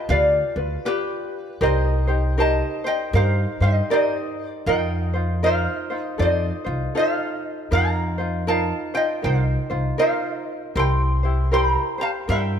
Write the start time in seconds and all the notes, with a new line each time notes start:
0.09 D2 F4 G4 B4 D5 F5
0.56 D2 F4 B4 D5
0.85 F4 G4 B4 D5
1.61 C2 D#4 G4 A#4 C5 D#5
1.65 C5
2.07 D#4 G4 C5
2.38 D#4 G4 A#4 C5 D#5 A5
2.84 D#4 G4 C5 D#5 G5
3.13 G2 D#4 G4 A#4 C5 F5
3.60 G2 D#4 G4 C5 D#5
3.90 D#4 G4 A#4 C5 D#5
4.45 D5
4.66 F2 D#4 F4 A#4 C5 D#5 G5
5.14 D#4 F4 C5
5.43 D#4 F4 A#4 C5 F5
5.90 D#4 F4 C5
6.01 D#5
6.18 F2 D#4 F4 A4 C5 D#5
6.22 C5
6.64 C2 D#4 F4 C5
6.95 D#4 F4 A4 C5 F5
6.99 C5
7.71 F2 D#4 F4 A#4 C5 F5 A#5
8.18 D#4 F4 C5
8.47 D#4 F4 A#4 C5 F5 A5
8.94 D#4 F4 C5 D#5 G5
9.22 C2 D#4 F4 A#4 C5 F5
9.70 C2 D#4 F4 C5
9.98 D#4 F4 A#4 C5 F5
10.75 C2 E4 G4 A#4 C5 G5 C6
11.23 E4 G4 C5
11.51 E4 G4 A#4 C5 G5 B5
11.72 A#5
11.98 G4 C5 A5
12.03 F5
12.28 G2 E4 G4 A#4 C5 E5 G5